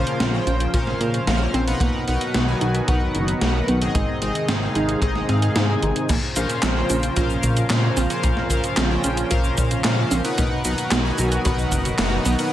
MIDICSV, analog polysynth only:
0, 0, Header, 1, 2, 480
1, 0, Start_track
1, 0, Tempo, 535714
1, 1621, Time_signature, 4, 2, 24, 8
1, 11226, End_track
2, 0, Start_track
2, 0, Title_t, "Analog polysynth"
2, 0, Program_c, 0, 90
2, 0, Note_on_c, 0, 46, 88
2, 0, Note_on_c, 0, 61, 83
2, 0, Note_on_c, 0, 70, 83
2, 0, Note_on_c, 0, 72, 81
2, 0, Note_on_c, 0, 77, 102
2, 273, Note_off_c, 0, 46, 0
2, 273, Note_off_c, 0, 61, 0
2, 273, Note_off_c, 0, 70, 0
2, 273, Note_off_c, 0, 72, 0
2, 273, Note_off_c, 0, 77, 0
2, 303, Note_on_c, 0, 46, 82
2, 303, Note_on_c, 0, 61, 74
2, 303, Note_on_c, 0, 70, 73
2, 303, Note_on_c, 0, 72, 76
2, 303, Note_on_c, 0, 79, 90
2, 633, Note_off_c, 0, 46, 0
2, 633, Note_off_c, 0, 61, 0
2, 633, Note_off_c, 0, 70, 0
2, 633, Note_off_c, 0, 72, 0
2, 633, Note_off_c, 0, 79, 0
2, 663, Note_on_c, 0, 46, 87
2, 663, Note_on_c, 0, 61, 81
2, 663, Note_on_c, 0, 70, 81
2, 663, Note_on_c, 0, 72, 79
2, 663, Note_on_c, 0, 77, 96
2, 1113, Note_off_c, 0, 46, 0
2, 1113, Note_off_c, 0, 61, 0
2, 1113, Note_off_c, 0, 70, 0
2, 1113, Note_off_c, 0, 72, 0
2, 1113, Note_off_c, 0, 77, 0
2, 1141, Note_on_c, 0, 46, 100
2, 1141, Note_on_c, 0, 72, 90
2, 1141, Note_on_c, 0, 77, 109
2, 1142, Note_on_c, 0, 61, 88
2, 1142, Note_on_c, 0, 70, 93
2, 1472, Note_off_c, 0, 46, 0
2, 1472, Note_off_c, 0, 61, 0
2, 1472, Note_off_c, 0, 70, 0
2, 1472, Note_off_c, 0, 72, 0
2, 1472, Note_off_c, 0, 77, 0
2, 1501, Note_on_c, 0, 71, 89
2, 1502, Note_on_c, 0, 47, 100
2, 1502, Note_on_c, 0, 63, 90
2, 1502, Note_on_c, 0, 70, 89
2, 1502, Note_on_c, 0, 78, 113
2, 1832, Note_off_c, 0, 47, 0
2, 1832, Note_off_c, 0, 71, 0
2, 1832, Note_off_c, 0, 78, 0
2, 1833, Note_off_c, 0, 63, 0
2, 1833, Note_off_c, 0, 70, 0
2, 1862, Note_on_c, 0, 47, 89
2, 1862, Note_on_c, 0, 71, 84
2, 1862, Note_on_c, 0, 78, 101
2, 1863, Note_on_c, 0, 63, 86
2, 1863, Note_on_c, 0, 70, 84
2, 2193, Note_off_c, 0, 47, 0
2, 2193, Note_off_c, 0, 63, 0
2, 2193, Note_off_c, 0, 70, 0
2, 2193, Note_off_c, 0, 71, 0
2, 2193, Note_off_c, 0, 78, 0
2, 2222, Note_on_c, 0, 80, 91
2, 2223, Note_on_c, 0, 47, 83
2, 2223, Note_on_c, 0, 63, 76
2, 2223, Note_on_c, 0, 70, 76
2, 2223, Note_on_c, 0, 71, 77
2, 2553, Note_off_c, 0, 47, 0
2, 2553, Note_off_c, 0, 63, 0
2, 2553, Note_off_c, 0, 70, 0
2, 2553, Note_off_c, 0, 71, 0
2, 2553, Note_off_c, 0, 80, 0
2, 2582, Note_on_c, 0, 47, 88
2, 2582, Note_on_c, 0, 63, 79
2, 2582, Note_on_c, 0, 70, 82
2, 2582, Note_on_c, 0, 71, 80
2, 2582, Note_on_c, 0, 78, 99
2, 3032, Note_off_c, 0, 47, 0
2, 3032, Note_off_c, 0, 63, 0
2, 3032, Note_off_c, 0, 71, 0
2, 3032, Note_off_c, 0, 78, 0
2, 3033, Note_off_c, 0, 70, 0
2, 3061, Note_on_c, 0, 70, 92
2, 3061, Note_on_c, 0, 71, 91
2, 3061, Note_on_c, 0, 78, 109
2, 3062, Note_on_c, 0, 47, 100
2, 3062, Note_on_c, 0, 63, 89
2, 3392, Note_off_c, 0, 47, 0
2, 3392, Note_off_c, 0, 63, 0
2, 3392, Note_off_c, 0, 70, 0
2, 3392, Note_off_c, 0, 71, 0
2, 3392, Note_off_c, 0, 78, 0
2, 3422, Note_on_c, 0, 44, 98
2, 3422, Note_on_c, 0, 60, 89
2, 3422, Note_on_c, 0, 63, 90
2, 3422, Note_on_c, 0, 68, 91
2, 3422, Note_on_c, 0, 75, 111
2, 3752, Note_off_c, 0, 44, 0
2, 3752, Note_off_c, 0, 60, 0
2, 3752, Note_off_c, 0, 63, 0
2, 3753, Note_off_c, 0, 68, 0
2, 3753, Note_off_c, 0, 75, 0
2, 3781, Note_on_c, 0, 44, 91
2, 3781, Note_on_c, 0, 60, 84
2, 3781, Note_on_c, 0, 63, 85
2, 3781, Note_on_c, 0, 68, 86
2, 3781, Note_on_c, 0, 75, 102
2, 4112, Note_off_c, 0, 44, 0
2, 4112, Note_off_c, 0, 60, 0
2, 4112, Note_off_c, 0, 63, 0
2, 4112, Note_off_c, 0, 68, 0
2, 4112, Note_off_c, 0, 75, 0
2, 4141, Note_on_c, 0, 44, 80
2, 4141, Note_on_c, 0, 60, 74
2, 4141, Note_on_c, 0, 63, 78
2, 4141, Note_on_c, 0, 68, 75
2, 4141, Note_on_c, 0, 77, 90
2, 4472, Note_off_c, 0, 44, 0
2, 4472, Note_off_c, 0, 60, 0
2, 4472, Note_off_c, 0, 63, 0
2, 4472, Note_off_c, 0, 68, 0
2, 4472, Note_off_c, 0, 77, 0
2, 4501, Note_on_c, 0, 63, 80
2, 4501, Note_on_c, 0, 68, 80
2, 4502, Note_on_c, 0, 44, 87
2, 4502, Note_on_c, 0, 60, 81
2, 4502, Note_on_c, 0, 75, 98
2, 4717, Note_off_c, 0, 44, 0
2, 4717, Note_off_c, 0, 60, 0
2, 4717, Note_off_c, 0, 63, 0
2, 4717, Note_off_c, 0, 68, 0
2, 4717, Note_off_c, 0, 75, 0
2, 4741, Note_on_c, 0, 60, 82
2, 4741, Note_on_c, 0, 63, 83
2, 4741, Note_on_c, 0, 68, 80
2, 4741, Note_on_c, 0, 77, 99
2, 4742, Note_on_c, 0, 44, 89
2, 4832, Note_off_c, 0, 44, 0
2, 4832, Note_off_c, 0, 60, 0
2, 4832, Note_off_c, 0, 63, 0
2, 4832, Note_off_c, 0, 68, 0
2, 4832, Note_off_c, 0, 77, 0
2, 4861, Note_on_c, 0, 60, 81
2, 4861, Note_on_c, 0, 68, 80
2, 4862, Note_on_c, 0, 44, 86
2, 4862, Note_on_c, 0, 63, 78
2, 4862, Note_on_c, 0, 77, 92
2, 5072, Note_off_c, 0, 44, 0
2, 5072, Note_off_c, 0, 60, 0
2, 5072, Note_off_c, 0, 63, 0
2, 5072, Note_off_c, 0, 68, 0
2, 5072, Note_off_c, 0, 77, 0
2, 5102, Note_on_c, 0, 44, 84
2, 5102, Note_on_c, 0, 60, 78
2, 5102, Note_on_c, 0, 63, 75
2, 5102, Note_on_c, 0, 68, 77
2, 5102, Note_on_c, 0, 80, 91
2, 5447, Note_off_c, 0, 44, 0
2, 5447, Note_off_c, 0, 60, 0
2, 5447, Note_off_c, 0, 63, 0
2, 5447, Note_off_c, 0, 68, 0
2, 5447, Note_off_c, 0, 80, 0
2, 5702, Note_on_c, 0, 46, 92
2, 5702, Note_on_c, 0, 61, 83
2, 5702, Note_on_c, 0, 70, 85
2, 5702, Note_on_c, 0, 72, 87
2, 5702, Note_on_c, 0, 77, 104
2, 6032, Note_off_c, 0, 46, 0
2, 6032, Note_off_c, 0, 61, 0
2, 6032, Note_off_c, 0, 70, 0
2, 6032, Note_off_c, 0, 72, 0
2, 6032, Note_off_c, 0, 77, 0
2, 6061, Note_on_c, 0, 46, 84
2, 6061, Note_on_c, 0, 70, 76
2, 6061, Note_on_c, 0, 72, 75
2, 6061, Note_on_c, 0, 79, 93
2, 6062, Note_on_c, 0, 61, 75
2, 6392, Note_off_c, 0, 46, 0
2, 6392, Note_off_c, 0, 61, 0
2, 6392, Note_off_c, 0, 70, 0
2, 6392, Note_off_c, 0, 72, 0
2, 6392, Note_off_c, 0, 79, 0
2, 6422, Note_on_c, 0, 46, 87
2, 6422, Note_on_c, 0, 61, 80
2, 6422, Note_on_c, 0, 70, 81
2, 6422, Note_on_c, 0, 72, 81
2, 6422, Note_on_c, 0, 77, 98
2, 6872, Note_off_c, 0, 46, 0
2, 6872, Note_off_c, 0, 61, 0
2, 6872, Note_off_c, 0, 70, 0
2, 6872, Note_off_c, 0, 72, 0
2, 6872, Note_off_c, 0, 77, 0
2, 6901, Note_on_c, 0, 46, 98
2, 6901, Note_on_c, 0, 61, 93
2, 6901, Note_on_c, 0, 70, 90
2, 6901, Note_on_c, 0, 72, 92
2, 6901, Note_on_c, 0, 77, 111
2, 7232, Note_off_c, 0, 46, 0
2, 7232, Note_off_c, 0, 61, 0
2, 7232, Note_off_c, 0, 70, 0
2, 7232, Note_off_c, 0, 72, 0
2, 7232, Note_off_c, 0, 77, 0
2, 7260, Note_on_c, 0, 46, 98
2, 7260, Note_on_c, 0, 61, 90
2, 7261, Note_on_c, 0, 70, 89
2, 7261, Note_on_c, 0, 72, 93
2, 7261, Note_on_c, 0, 77, 109
2, 7592, Note_off_c, 0, 46, 0
2, 7592, Note_off_c, 0, 61, 0
2, 7592, Note_off_c, 0, 70, 0
2, 7592, Note_off_c, 0, 72, 0
2, 7592, Note_off_c, 0, 77, 0
2, 7620, Note_on_c, 0, 77, 107
2, 7621, Note_on_c, 0, 46, 91
2, 7621, Note_on_c, 0, 61, 87
2, 7621, Note_on_c, 0, 70, 84
2, 7621, Note_on_c, 0, 72, 84
2, 7952, Note_off_c, 0, 46, 0
2, 7952, Note_off_c, 0, 61, 0
2, 7952, Note_off_c, 0, 70, 0
2, 7952, Note_off_c, 0, 72, 0
2, 7952, Note_off_c, 0, 77, 0
2, 7980, Note_on_c, 0, 61, 75
2, 7981, Note_on_c, 0, 46, 83
2, 7981, Note_on_c, 0, 70, 75
2, 7981, Note_on_c, 0, 72, 74
2, 7981, Note_on_c, 0, 79, 94
2, 8312, Note_off_c, 0, 46, 0
2, 8312, Note_off_c, 0, 61, 0
2, 8312, Note_off_c, 0, 70, 0
2, 8312, Note_off_c, 0, 72, 0
2, 8312, Note_off_c, 0, 79, 0
2, 8340, Note_on_c, 0, 77, 98
2, 8341, Note_on_c, 0, 46, 89
2, 8341, Note_on_c, 0, 61, 80
2, 8341, Note_on_c, 0, 70, 81
2, 8341, Note_on_c, 0, 72, 83
2, 8792, Note_off_c, 0, 46, 0
2, 8792, Note_off_c, 0, 61, 0
2, 8792, Note_off_c, 0, 70, 0
2, 8792, Note_off_c, 0, 72, 0
2, 8792, Note_off_c, 0, 77, 0
2, 8820, Note_on_c, 0, 61, 95
2, 8820, Note_on_c, 0, 70, 93
2, 8821, Note_on_c, 0, 46, 101
2, 8821, Note_on_c, 0, 72, 93
2, 8821, Note_on_c, 0, 77, 113
2, 9152, Note_off_c, 0, 46, 0
2, 9152, Note_off_c, 0, 61, 0
2, 9152, Note_off_c, 0, 70, 0
2, 9152, Note_off_c, 0, 72, 0
2, 9152, Note_off_c, 0, 77, 0
2, 9180, Note_on_c, 0, 47, 102
2, 9180, Note_on_c, 0, 63, 94
2, 9180, Note_on_c, 0, 70, 92
2, 9180, Note_on_c, 0, 71, 94
2, 9180, Note_on_c, 0, 78, 114
2, 9511, Note_off_c, 0, 47, 0
2, 9511, Note_off_c, 0, 63, 0
2, 9511, Note_off_c, 0, 70, 0
2, 9511, Note_off_c, 0, 78, 0
2, 9512, Note_off_c, 0, 71, 0
2, 9540, Note_on_c, 0, 47, 91
2, 9540, Note_on_c, 0, 63, 84
2, 9540, Note_on_c, 0, 70, 83
2, 9540, Note_on_c, 0, 78, 105
2, 9541, Note_on_c, 0, 71, 86
2, 9872, Note_off_c, 0, 47, 0
2, 9872, Note_off_c, 0, 63, 0
2, 9872, Note_off_c, 0, 70, 0
2, 9872, Note_off_c, 0, 71, 0
2, 9872, Note_off_c, 0, 78, 0
2, 9901, Note_on_c, 0, 47, 85
2, 9901, Note_on_c, 0, 63, 77
2, 9901, Note_on_c, 0, 70, 77
2, 9901, Note_on_c, 0, 71, 79
2, 9901, Note_on_c, 0, 80, 89
2, 10232, Note_off_c, 0, 47, 0
2, 10232, Note_off_c, 0, 63, 0
2, 10232, Note_off_c, 0, 70, 0
2, 10232, Note_off_c, 0, 71, 0
2, 10232, Note_off_c, 0, 80, 0
2, 10260, Note_on_c, 0, 70, 80
2, 10260, Note_on_c, 0, 78, 99
2, 10261, Note_on_c, 0, 47, 86
2, 10261, Note_on_c, 0, 63, 82
2, 10261, Note_on_c, 0, 71, 83
2, 10712, Note_off_c, 0, 47, 0
2, 10712, Note_off_c, 0, 63, 0
2, 10712, Note_off_c, 0, 70, 0
2, 10712, Note_off_c, 0, 71, 0
2, 10712, Note_off_c, 0, 78, 0
2, 10740, Note_on_c, 0, 70, 94
2, 10740, Note_on_c, 0, 78, 112
2, 10741, Note_on_c, 0, 47, 101
2, 10741, Note_on_c, 0, 63, 95
2, 10741, Note_on_c, 0, 71, 93
2, 11072, Note_off_c, 0, 47, 0
2, 11072, Note_off_c, 0, 63, 0
2, 11072, Note_off_c, 0, 70, 0
2, 11072, Note_off_c, 0, 71, 0
2, 11072, Note_off_c, 0, 78, 0
2, 11102, Note_on_c, 0, 47, 104
2, 11102, Note_on_c, 0, 63, 92
2, 11102, Note_on_c, 0, 70, 91
2, 11102, Note_on_c, 0, 71, 93
2, 11102, Note_on_c, 0, 78, 115
2, 11226, Note_off_c, 0, 47, 0
2, 11226, Note_off_c, 0, 63, 0
2, 11226, Note_off_c, 0, 70, 0
2, 11226, Note_off_c, 0, 71, 0
2, 11226, Note_off_c, 0, 78, 0
2, 11226, End_track
0, 0, End_of_file